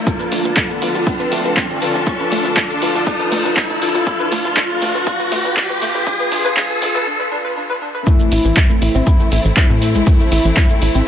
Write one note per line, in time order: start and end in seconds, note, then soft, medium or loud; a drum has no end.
0.00 riser medium
0.07 7.03 D3 medium
0.07 0.10 D4 medium
0.07 7.03 D4 medium
0.07 0.72 F4 medium
0.07 7.03 F4 medium
0.07 7.03 A4 medium
0.07 kick loud
0.07 shaker medium
0.20 0.25 B4 medium
0.20 shaker soft
0.32 0.40 D2 medium
0.32 0.40 A3 loud
0.32 open hi-hat loud
0.32 shaker medium
0.45 0.52 D2 medium
0.45 0.50 B4 medium
0.45 shaker soft
0.57 0.62 A4 medium
0.57 kick loud
0.57 clap loud
0.57 shaker medium
0.70 0.75 A4 medium
0.70 shaker soft
0.82 0.90 D2 medium
0.82 1.05 F4 medium
0.82 0.85 B4 medium
0.82 open hi-hat medium
0.82 shaker medium
0.95 1.02 D2 medium
0.95 1.00 F4 medium
0.95 shaker soft
1.07 1.10 D4 medium
1.07 1.72 F4 loud
1.07 kick loud
1.07 shaker medium
1.20 1.25 B4 loud
1.20 shaker soft
1.32 1.40 D2 loud
1.32 1.40 A3 loud
1.32 open hi-hat loud
1.32 shaker medium
1.45 1.52 D2 medium
1.45 1.50 B4 medium
1.45 shaker soft
1.57 1.62 A4 medium
1.57 kick loud
1.57 clap loud
1.57 shaker medium
1.70 1.77 D2 medium
1.70 1.75 A4 medium
1.70 shaker soft
1.82 2.05 F4 medium
1.82 1.85 B4 medium
1.82 open hi-hat medium
1.82 shaker medium
1.95 2.02 D2 medium
1.95 2.00 F4 medium
1.95 shaker soft
2.07 2.10 D4 medium
2.07 2.72 F4 loud
2.07 kick loud
2.07 shaker medium
2.20 2.25 B4 loud
2.20 shaker soft
2.32 2.40 D2 medium
2.32 2.40 A3 loud
2.32 open hi-hat loud
2.32 shaker medium
2.45 2.52 D2 medium
2.45 2.50 B4 medium
2.45 shaker soft
2.57 2.62 A4 medium
2.57 kick loud
2.57 clap loud
2.57 shaker medium
2.70 2.75 A4 medium
2.70 shaker soft
2.82 2.90 D2 medium
2.82 3.05 F4 medium
2.82 2.85 B4 medium
2.82 open hi-hat medium
2.82 shaker medium
2.95 3.02 D2 medium
2.95 3.00 F4 medium
2.95 shaker soft
3.07 3.10 D4 medium
3.07 kick loud
3.07 shaker medium
3.20 3.25 B4 loud
3.20 shaker soft
3.32 3.40 D2 loud
3.32 3.40 A3 loud
3.32 open hi-hat loud
3.32 shaker medium
3.45 3.52 D2 medium
3.45 3.50 B4 medium
3.45 shaker soft
3.57 3.62 A4 medium
3.57 kick loud
3.57 clap loud
3.57 shaker medium
3.70 3.77 D2 medium
3.70 3.75 A4 medium
3.70 shaker soft
3.82 4.05 F4 medium
3.82 3.85 B4 medium
3.82 open hi-hat medium
3.82 shaker medium
3.95 4.02 D2 medium
3.95 4.00 F4 medium
3.95 shaker soft
4.07 4.10 D4 medium
4.07 kick loud
4.07 shaker medium
4.20 4.25 B4 loud
4.20 shaker soft
4.32 4.40 D2 medium
4.32 4.40 A3 loud
4.32 open hi-hat loud
4.32 shaker medium
4.45 4.52 D2 medium
4.45 4.50 B4 medium
4.45 shaker soft
4.57 4.60 D4 medium
4.57 5.05 F4 loud
4.57 kick loud
4.57 clap loud
4.57 shaker medium
4.70 4.75 B4 loud
4.70 shaker soft
4.82 4.90 D2 medium
4.82 4.90 A3 loud
4.82 open hi-hat medium
4.82 shaker medium
4.95 5.02 D2 medium
4.95 5.00 B4 medium
4.95 shaker soft
5.07 5.10 D4 medium
5.07 5.55 F4 loud
5.07 kick loud
5.07 shaker medium
5.20 5.25 B4 loud
5.20 shaker soft
5.32 5.39 D2 medium
5.32 5.40 A3 loud
5.32 open hi-hat loud
5.32 shaker medium
5.45 5.52 D2 medium
5.45 5.50 B4 medium
5.45 shaker soft
5.57 5.60 D4 medium
5.57 kick loud
5.57 clap loud
5.57 shaker medium
5.70 5.77 D2 medium
5.70 5.75 B4 loud
5.70 shaker soft
5.82 5.90 A3 loud
5.82 open hi-hat medium
5.82 shaker medium
5.95 6.02 D2 medium
5.95 6.00 B4 medium
5.95 shaker soft
6.07 6.10 D4 medium
6.07 6.30 F4 loud
6.07 kick loud
6.07 shaker medium
6.20 6.25 B4 loud
6.20 shaker soft
6.32 6.39 D2 medium
6.32 6.35 D4 medium
6.32 6.55 F4 loud
6.32 open hi-hat loud
6.32 shaker medium
6.45 6.52 D2 medium
6.45 6.50 B4 loud
6.45 shaker soft
6.57 6.60 D4 medium
6.57 6.80 F4 loud
6.57 kick loud
6.57 clap loud
6.57 shaker medium
6.70 6.75 B4 loud
6.70 shaker soft
6.82 6.89 D2 loud
6.82 6.85 D4 medium
6.82 7.05 F4 loud
6.82 open hi-hat medium
6.82 shaker medium
6.95 7.02 D2 medium
6.95 7.00 B4 loud
6.95 shaker soft
7.07 7.10 D4 medium
7.20 7.25 B4 loud
7.32 7.35 D4 medium
7.45 7.50 B4 loud
7.57 7.60 D4 medium
7.70 7.75 B4 loud
7.82 7.85 D4 medium
7.95 8.00 B4 loud
8.07 11.08 A3 medium
8.07 8.12 A3 medium
8.07 11.08 C4 medium
8.07 8.72 E4 loud
8.07 11.08 E4 loud
8.07 8.12 A4 medium
8.07 kick loud
8.07 shaker medium
8.20 8.23 A3 medium
8.20 8.23 A4 medium
8.20 shaker medium
8.32 8.40 A1 medium
8.32 8.37 E4 medium
8.32 8.37 E5 medium
8.32 open hi-hat loud
8.32 shaker medium
8.45 8.52 A1 medium
8.45 8.50 E3 medium
8.45 8.50 E4 medium
8.45 shaker soft
8.57 8.60 E4 loud
8.57 8.60 E5 medium
8.57 kick loud
8.57 clap loud
8.57 shaker medium
8.70 8.73 A3 medium
8.70 8.73 A4 medium
8.70 shaker soft
8.82 8.90 A1 medium
8.82 9.47 E4 loud
8.82 8.90 E4 medium
8.82 8.90 E5 medium
8.82 open hi-hat medium
8.82 shaker medium
8.95 9.02 A1 medium
8.95 9.00 C4 medium
8.95 9.00 C5 medium
8.95 shaker soft
9.07 9.12 E4 medium
9.07 9.12 E5 medium
9.07 kick loud
9.07 shaker medium
9.20 9.23 A3 medium
9.20 9.23 A4 medium
9.20 shaker soft
9.32 9.40 A1 medium
9.32 9.37 E4 medium
9.32 9.37 E5 medium
9.32 open hi-hat loud
9.32 shaker medium
9.45 9.52 A1 medium
9.45 9.50 E3 medium
9.45 9.50 E4 medium
9.45 shaker soft
9.57 9.62 C4 loud
9.57 10.97 E4 loud
9.57 9.62 C5 medium
9.57 kick loud
9.57 clap loud
9.57 shaker medium
9.70 9.96 A2 medium
9.70 9.73 A3 medium
9.70 9.73 A4 medium
9.70 shaker soft
9.82 9.87 A3 medium
9.82 9.87 A4 medium
9.82 open hi-hat medium
9.82 shaker medium
9.95 10.02 A1 medium
9.95 10.00 G#3 medium
9.95 10.00 G#4 medium
9.95 shaker soft
10.07 10.12 A3 medium
10.07 10.12 A4 medium
10.07 kick loud
10.07 shaker medium
10.20 10.23 A3 medium
10.20 10.23 A4 medium
10.20 shaker soft
10.32 10.40 A1 medium
10.32 10.37 E4 medium
10.32 10.37 E5 medium
10.32 open hi-hat loud
10.32 shaker medium
10.45 10.52 A1 medium
10.45 10.50 E3 medium
10.45 10.50 E4 medium
10.45 shaker soft
10.57 10.60 E4 loud
10.57 10.60 E5 medium
10.57 kick loud
10.57 clap loud
10.57 shaker medium
10.70 10.73 A3 medium
10.70 10.73 A4 medium
10.70 shaker soft
10.82 10.90 A1 medium
10.82 10.90 E4 medium
10.82 10.90 E5 medium
10.82 open hi-hat loud
10.82 shaker medium
10.95 11.02 A1 medium
10.95 11.00 C4 medium
10.95 11.00 C5 medium
10.95 shaker soft